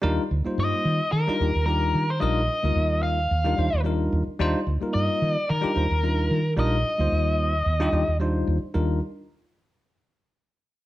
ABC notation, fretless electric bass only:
X:1
M:4/4
L:1/16
Q:"Swing 16ths" 1/4=110
K:Eb
V:1 name="Fretless electric bass" clef=bass
E,, z D,, z G,, z E, z E, z E,, E,,3 E,2 | B,,,2 z D,, E,,4 E,,2 E,, E,,3 E,, z | E,, z D,, z G,, z E, z E, z E,, E,,3 E,2 | B,,,2 z D,, E,,4 E,,2 E,, E,,3 E,, z |
E,,2 z12 z2 |]